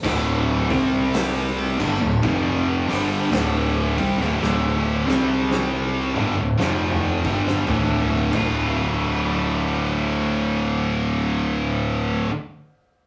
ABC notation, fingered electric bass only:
X:1
M:4/4
L:1/16
Q:"Swing" 1/4=55
K:Dm
V:1 name="Fingered electric bass" clef=bass
D,,,2 C,,4 G,,, D,,, F,,,2 G,,,2 D,,,2 C,, D,,, | D,,,2 C,,4 G,,, D,,, F,,,2 G,,,2 D,,,2 D,,,2- | D,,,16 |]